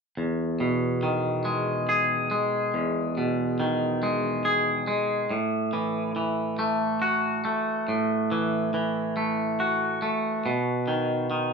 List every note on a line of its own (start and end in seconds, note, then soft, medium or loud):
0.17 2.31 E2 soft
0.60 2.74 B2 soft
1.03 3.17 D#3 soft
1.45 2.30 G#3 soft
1.89 4.03 G#4 soft
2.31 4.02 G#3 soft
2.74 4.88 E2 soft
3.17 5.30 B2 soft
3.60 5.31 D#3 soft
4.03 4.86 G#3 soft
4.45 5.31 G#4 soft
4.88 5.31 G#3 soft
5.31 7.45 A2 soft
5.73 6.15 E3 soft
6.16 8.30 E3 soft
6.59 7.44 A3 soft
7.02 9.60 F#4 soft
7.45 9.16 A3 soft
7.88 10.02 A2 soft
8.32 8.73 E3 soft
8.74 10.45 E3 soft
9.17 10.02 A3 soft
9.60 11.53 F#4 soft
10.02 10.49 A3 soft
10.46 11.53 B2 soft
10.88 11.29 D#3 soft
11.31 11.53 D#3 soft